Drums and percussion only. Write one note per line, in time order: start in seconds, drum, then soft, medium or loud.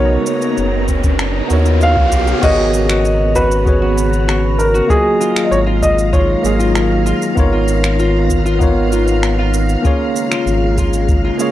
0.26 shaker medium
0.42 shaker soft
0.57 shaker soft
0.88 kick medium
0.88 shaker medium
1.04 kick loud
1.04 shaker soft
1.19 finger snap medium
1.19 shaker soft
1.50 shaker medium
1.66 shaker soft
1.81 shaker soft
1.97 kick loud
2.12 kick medium
2.12 shaker medium
2.27 shaker soft
2.43 kick loud
2.43 crash loud
2.43 shaker soft
2.74 shaker medium
2.89 finger snap medium
2.89 shaker soft
3.05 shaker soft
3.36 kick medium
3.36 shaker medium
3.51 shaker soft
3.66 kick loud
3.66 shaker soft
3.98 shaker medium
4.13 shaker soft
4.29 finger snap medium
4.29 shaker soft
4.60 shaker medium
4.75 shaker soft
4.90 kick loud
4.90 shaker soft
5.21 shaker medium
5.36 finger snap medium
5.36 shaker soft
5.52 shaker soft
5.83 kick medium
5.83 shaker medium
5.98 shaker soft
6.13 kick loud
6.13 shaker soft
6.45 shaker medium
6.60 shaker soft
6.75 finger snap medium
6.75 shaker soft
7.06 shaker medium
7.22 shaker soft
7.37 kick loud
7.37 shaker soft
7.68 shaker medium
7.84 finger snap medium
7.84 shaker soft
7.99 shaker soft
8.30 kick medium
8.30 shaker medium
8.46 shaker soft
8.61 kick loud
8.61 shaker soft
8.92 shaker medium
9.08 shaker soft
9.23 finger snap medium
9.23 shaker soft
9.54 shaker medium
9.69 shaker soft
9.85 kick loud
9.85 shaker soft
10.16 shaker medium
10.32 finger snap medium
10.32 shaker soft
10.47 shaker soft
10.78 kick medium
10.78 shaker medium
10.93 shaker soft
11.09 kick loud
11.09 shaker soft
11.40 shaker medium